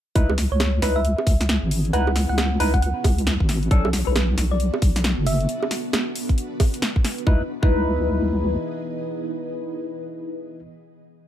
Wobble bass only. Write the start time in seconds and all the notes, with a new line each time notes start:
0.16 C#2
0.52 C#2
0.82 C#2
1.27 C#2
1.63 G#1
1.93 C#2
2.30 C#2
2.60 C#2
3.04 C#2
3.40 G#1
3.71 B1
4.07 B1
4.38 B1
4.82 B1
5.18 F#1
7.27 C#2
7.63 C#2